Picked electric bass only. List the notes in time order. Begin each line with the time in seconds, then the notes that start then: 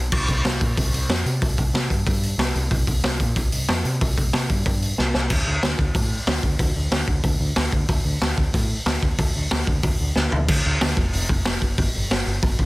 0.12 C2
0.29 C2
0.45 C2
0.61 A#2
0.78 C2
0.93 C2
1.09 F2
1.25 C3
1.42 C2
1.58 C2
1.74 C3
1.90 G2
2.07 G2
2.38 C2
2.55 C2
2.71 C2
2.87 C2
3.04 C2
3.20 A#2
3.36 C2
3.52 C2
3.69 F2
3.85 C3
4.01 C2
4.18 C2
4.34 C3
4.50 G2
4.66 G2
4.99 C2
5.14 C2
5.30 D2
5.47 D2
5.63 D2
5.79 D2
5.95 A2
6.27 D2
6.43 D2
6.59 D2
6.76 D2
6.91 D2
7.08 D2
7.24 D2
7.40 D2
7.57 D2
7.72 D2
7.89 D2
8.05 D2
8.22 D2
8.38 D2
8.54 A2
8.86 D2
9.02 D2
9.19 D2
9.36 D2
9.52 D2
9.67 D2
9.83 D2
10.00 D2
10.16 D2
10.33 D2
10.49 D2
10.66 D2
10.81 D2
10.97 F1
11.14 F1
11.29 F1
11.45 F1
11.62 F#1
11.78 G1
11.94 G1
12.10 G1
12.26 G1
12.43 G1
12.59 G1